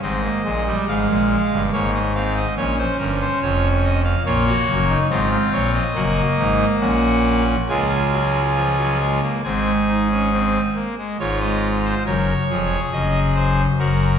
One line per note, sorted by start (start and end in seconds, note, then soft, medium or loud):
0.02 0.29 G#1 medium
0.02 0.29 G#2 medium
0.02 0.20 C4 medium
0.02 0.76 D#5 medium
0.23 0.42 A#3 medium
0.44 0.71 A#1 medium
0.44 0.71 A#2 medium
0.44 0.63 G#3 medium
0.67 0.85 G3 medium
0.88 1.06 G#1 medium
0.88 1.06 G#2 medium
0.88 1.61 G#3 medium
0.88 1.61 F5 medium
1.09 1.36 A#1 medium
1.09 1.36 A#2 medium
1.52 1.70 G1 medium
1.52 1.70 G2 medium
1.72 2.45 G#1 medium
1.72 2.45 G#2 medium
1.72 1.99 A#3 medium
1.72 1.91 C#5 medium
1.94 2.12 D#5 medium
2.15 2.41 C4 medium
2.15 2.33 F5 medium
2.36 2.54 D#5 medium
2.57 2.83 A#1 medium
2.57 2.83 A#2 medium
2.57 4.02 C#4 medium
2.57 2.75 C#5 medium
2.78 2.96 C5 medium
2.99 3.25 G1 medium
2.99 3.25 G2 medium
2.99 3.17 A#4 medium
3.21 3.39 C5 medium
3.42 4.14 F1 medium
3.42 4.14 F2 medium
3.42 3.68 C#5 medium
3.84 4.02 D#5 medium
4.04 4.22 F5 medium
4.26 4.52 A#1 medium
4.26 4.52 A#2 medium
4.26 4.98 A#3 medium
4.26 4.44 F4 medium
4.26 4.98 C#5 medium
4.48 4.73 F#4 medium
4.68 4.94 F#1 medium
4.68 4.94 F#2 medium
4.89 5.07 D#4 medium
5.10 5.37 G#1 medium
5.10 5.36 G#2 medium
5.10 5.83 C4 medium
5.10 5.83 F4 medium
5.10 5.28 D#5 medium
5.31 5.49 F5 medium
5.52 5.79 A#1 medium
5.52 5.79 A#2 medium
5.52 5.71 C#5 medium
5.74 6.66 D#5 medium
5.95 6.22 F#1 medium
5.95 6.21 F#2 medium
5.95 7.44 A#3 medium
5.95 6.21 F#4 medium
6.38 6.65 G#1 medium
6.38 6.65 G#2 medium
6.38 6.65 D#4 medium
6.81 7.56 A#1 medium
6.81 7.56 A#2 medium
6.81 7.56 C#4 medium
6.81 7.56 F#5 medium
7.69 9.20 C#2 medium
7.69 9.20 C#3 medium
7.69 7.96 G#3 medium
7.69 9.20 F4 medium
7.69 9.20 G#5 medium
8.12 8.40 F#3 medium
8.56 8.75 F3 medium
8.78 8.97 F#3 medium
9.00 9.19 G#3 medium
9.22 9.41 A#3 medium
9.44 10.58 G#1 medium
9.44 10.58 G#2 medium
9.44 9.72 C4 medium
9.44 10.58 G#4 medium
9.44 10.58 G#5 medium
9.88 10.08 D#4 medium
10.11 10.30 C#4 medium
10.33 10.60 C4 medium
10.75 10.95 A#3 medium
10.98 11.17 G#3 medium
11.19 11.94 G#1 medium
11.19 11.94 G#2 medium
11.19 11.94 F4 medium
11.19 11.39 C#5 medium
11.41 11.68 D#5 medium
11.85 12.04 C5 medium
12.06 12.33 F#1 medium
12.06 12.33 F#2 medium
12.06 12.33 A#4 medium
12.06 12.80 C#5 medium
12.50 12.76 F1 medium
12.50 12.76 F2 medium
12.50 13.61 G#4 medium
12.92 13.66 F#1 medium
12.92 13.66 F#2 medium
12.92 13.19 D#5 medium
13.35 13.62 C5 medium
13.79 14.19 F#1 medium
13.79 14.19 F#2 medium
13.79 14.05 F#4 medium
13.79 14.19 A#4 medium